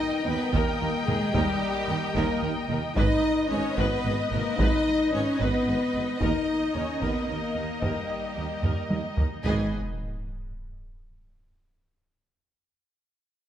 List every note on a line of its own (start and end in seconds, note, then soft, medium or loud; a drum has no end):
0.00 2.96 G3 medium
0.00 0.25 D#4 medium
0.00 0.25 D#4 loud
0.00 2.92 D#4 medium
0.00 2.96 A#4 medium
0.00 0.26 D#5 medium
0.00 2.92 D#5 medium
0.00 2.97 G5 medium
0.25 0.36 D#2 medium
0.25 0.34 D#2 medium
0.25 0.35 D#2 medium
0.25 0.52 B3 medium
0.25 0.34 A#4 medium
0.25 0.53 B4 medium
0.52 0.63 D#2 medium
0.52 0.62 D#2 medium
0.52 1.05 A#3 medium
0.52 1.07 A#3 medium
0.52 0.78 A#4 medium
0.52 1.06 A#4 medium
0.52 taiko medium
0.80 0.91 D#2 medium
0.80 0.89 D#2 medium
0.80 0.88 A#4 medium
1.05 1.17 D#2 medium
1.05 1.16 D#2 medium
1.05 1.33 G#3 medium
1.05 1.34 G#4 medium
1.05 1.16 A#4 medium
1.05 taiko mid medium
1.33 1.45 D#2 medium
1.33 1.42 D#2 medium
1.33 1.43 D#2 medium
1.33 2.13 G3 medium
1.33 2.15 G3 medium
1.33 2.13 G4 medium
1.33 1.59 A#4 medium
1.33 taiko loud
1.88 1.99 D#2 medium
1.88 1.96 D#2 medium
1.88 1.97 D#2 medium
1.88 1.97 A#4 medium
2.15 2.26 D#2 medium
2.15 2.23 D#2 medium
2.15 2.24 D#2 medium
2.15 2.42 A#3 medium
2.15 2.41 A#3 medium
2.15 2.42 A#4 medium
2.15 2.41 A#4 medium
2.15 taiko medium
2.42 2.50 D#2 medium
2.42 2.53 D#2 medium
2.42 2.51 A#4 medium
2.69 2.77 D#2 medium
2.69 2.78 D#2 medium
2.69 2.80 D#2 medium
2.69 2.78 A#4 medium
2.69 taiko mid soft
2.95 3.07 G#1 medium
2.95 3.05 G#1 medium
2.95 3.04 G#2 medium
2.95 6.20 G#3 medium
2.95 3.46 D#4 loud
2.95 9.41 D#4 medium
2.95 3.46 D#4 loud
2.95 6.20 B4 medium
2.95 3.21 B4 medium
2.95 9.40 D#5 medium
2.95 3.46 D#5 medium
2.95 6.17 D#5 medium
2.95 taiko loud
3.47 3.59 G#1 medium
3.47 3.62 G#1 medium
3.47 3.59 G#2 medium
3.47 3.76 C#4 medium
3.47 3.77 C#4 medium
3.47 3.59 B4 medium
3.47 3.76 C#5 medium
3.75 3.88 G#1 medium
3.75 3.86 G#1 medium
3.75 3.86 G#2 medium
3.75 4.30 B3 medium
3.75 4.31 B3 medium
3.75 4.31 B4 medium
3.75 4.02 B4 medium
3.75 taiko medium
4.05 4.13 G#1 medium
4.05 4.15 G#1 medium
4.05 4.13 G#2 medium
4.05 4.13 B4 medium
4.30 4.40 G#1 medium
4.30 4.43 G#1 medium
4.30 4.40 G#2 medium
4.30 4.57 A#3 medium
4.30 4.58 A#3 medium
4.30 4.57 A#4 medium
4.30 4.40 B4 medium
4.30 taiko mid soft
4.56 4.67 G#1 medium
4.56 4.67 G#2 medium
4.56 5.11 D#4 loud
4.56 5.12 D#4 medium
4.56 4.84 B4 medium
4.56 5.12 D#5 medium
4.56 taiko loud
4.60 4.70 G#1 medium
5.11 5.20 G#1 medium
5.11 5.25 G#1 medium
5.11 5.22 G#2 medium
5.11 5.39 C#4 medium
5.11 5.21 B4 soft
5.11 5.39 C#5 medium
5.39 5.48 G#1 medium
5.39 5.51 G#1 medium
5.39 5.48 G#2 medium
5.39 6.20 B3 medium
5.39 6.20 B4 medium
5.39 5.65 B4 medium
5.39 taiko medium
5.67 5.78 G#1 medium
5.67 5.76 G#1 medium
5.67 5.75 G#2 medium
5.67 5.75 B4 soft
5.94 6.05 G#1 soft
5.94 6.03 G#1 medium
5.94 6.02 G#2 soft
5.94 6.02 B4 medium
6.20 6.32 D#2 medium
6.20 6.29 D#2 medium
6.20 6.30 D#2 medium
6.20 9.45 A#3 medium
6.20 6.73 D#4 medium
6.20 6.46 A#4 medium
6.20 9.45 A#4 medium
6.20 6.74 D#5 medium
6.20 9.21 D#5 medium
6.20 taiko medium
6.74 6.86 D#2 soft
6.74 6.83 D#2 soft
6.74 7.01 C#4 medium
6.74 6.82 A#4 soft
6.74 7.01 C#5 medium
7.01 7.09 D#2 medium
7.01 7.10 D#2 medium
7.01 7.13 D#2 medium
7.01 7.28 B3 medium
7.01 7.26 A#4 medium
7.01 7.28 B4 medium
7.01 taiko medium
7.28 7.37 D#2 soft
7.28 7.40 D#2 soft
7.28 7.82 A#3 medium
7.28 7.36 A#4 soft
7.28 7.82 A#4 medium
7.55 7.63 D#2 soft
7.55 7.64 D#2 soft
7.55 7.67 D#2 soft
7.55 7.63 A#4 soft
7.81 7.90 D#2 soft
7.81 7.91 D#2 soft
7.81 7.94 D#2 soft
7.81 9.17 G3 medium
7.81 9.15 G3 medium
7.81 9.15 G4 medium
7.81 8.07 A#4 soft
7.81 taiko medium
8.36 8.44 D#2 soft
8.36 8.45 D#2 soft
8.36 8.48 D#2 soft
8.36 8.45 A#4 soft
8.62 8.71 D#2 soft
8.62 8.74 D#2 soft
8.62 8.71 D#2 soft
8.62 8.88 A#4 medium
8.62 taiko low-mid medium
8.90 9.01 D#2 soft
8.90 8.98 D#2 soft
8.90 8.98 A#4 soft
8.90 taiko high medium
9.16 9.25 D#2 soft
9.16 9.26 D#2 soft
9.16 9.29 D#2 soft
9.16 9.24 A#4 soft
9.16 taiko low medium
9.43 9.67 G#1 medium
9.43 9.75 G#1 medium
9.43 9.75 G#2 medium
9.43 9.67 D#3 medium
9.43 9.66 G#3 medium
9.43 9.75 B3 medium
9.43 9.75 D#4 medium
9.43 9.74 G#4 medium
9.43 9.75 G#4 medium
9.43 9.75 B4 medium
9.43 9.75 D#5 medium
9.43 9.75 G#5 medium
9.43 sub drop medium